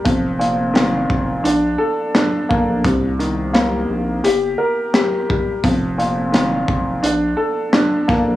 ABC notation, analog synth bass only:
X:1
M:4/4
L:1/16
Q:"Swing 16ths" 1/4=86
K:Fmix
V:1 name="Analog synth bass" clef=bass
F,,,6 F,,,2 B,,,2 z4 z B,,, | C,,6 B,,,2 G,,,2 z6 | F,,,6 F,,,2 B,,,2 z4 z B,,, |]